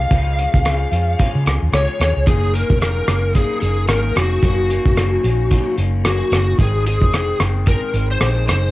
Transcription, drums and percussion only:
0.11 kick loud
0.11 closed hi-hat medium
0.39 closed hi-hat soft
0.54 kick medium
0.65 cross-stick medium
0.65 closed hi-hat medium
0.93 closed hi-hat soft
1.19 kick medium
1.19 closed hi-hat medium
1.46 cross-stick medium
1.46 closed hi-hat soft
1.74 cross-stick medium
1.74 closed hi-hat medium
2.01 cross-stick medium
2.01 closed hi-hat soft
2.27 kick loud
2.27 closed hi-hat medium
2.55 closed hi-hat soft
2.70 kick medium
2.82 cross-stick medium
2.82 closed hi-hat medium
3.08 cross-stick medium
3.08 closed hi-hat soft
3.35 kick medium
3.35 closed hi-hat medium
3.62 closed hi-hat soft
3.89 cross-stick medium
3.89 closed hi-hat medium
4.16 cross-stick medium
4.16 closed hi-hat soft
4.43 kick loud
4.43 closed hi-hat soft
4.70 closed hi-hat soft
4.86 kick medium
4.97 cross-stick medium
4.97 closed hi-hat medium
5.24 closed hi-hat medium
5.51 kick medium
5.51 closed hi-hat medium
5.77 closed hi-hat soft
6.05 cross-stick medium
6.05 closed hi-hat medium
6.32 cross-stick medium
6.32 closed hi-hat soft
6.59 kick loud
6.59 closed hi-hat medium
6.86 closed hi-hat soft
7.01 kick medium
7.13 cross-stick medium
7.13 closed hi-hat medium
7.40 cross-stick medium
7.40 closed hi-hat soft
7.67 kick medium
7.67 closed hi-hat medium
7.94 closed hi-hat soft
8.21 cross-stick medium
8.21 closed hi-hat medium
8.48 cross-stick medium
8.48 closed hi-hat soft

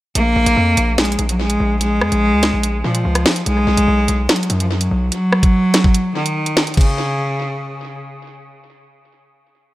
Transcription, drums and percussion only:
0.15 closed hi-hat medium
0.46 closed hi-hat medium
0.77 closed hi-hat medium
0.98 snare loud
0.98 closed hi-hat medium
1.05 closed hi-hat medium
1.12 closed hi-hat medium
1.19 closed hi-hat medium
1.29 closed hi-hat medium
1.50 closed hi-hat medium
1.81 closed hi-hat medium
2.01 cross-stick loud
2.12 closed hi-hat medium
2.43 snare medium
2.43 closed hi-hat medium
2.63 closed hi-hat medium
2.95 closed hi-hat medium
3.15 cross-stick medium
3.15 closed hi-hat medium
3.26 snare loud
3.26 open hi-hat medium
3.36 closed hi-hat medium
3.46 closed hi-hat medium
3.77 closed hi-hat medium
4.08 closed hi-hat medium
4.29 snare loud
4.29 closed hi-hat medium
4.36 closed hi-hat medium
4.43 closed hi-hat medium
4.50 closed hi-hat medium
4.60 closed hi-hat medium
4.81 closed hi-hat medium
5.12 closed hi-hat medium
5.33 cross-stick loud
5.43 kick loud
5.43 closed hi-hat medium
5.74 snare medium
5.74 closed hi-hat medium
5.84 kick loud
5.94 closed hi-hat medium
6.26 closed hi-hat medium
6.46 closed hi-hat medium
6.57 snare loud
6.67 closed hi-hat medium
6.74 kick loud
6.74 closed hi-hat medium
6.74 crash medium
6.81 closed hi-hat medium

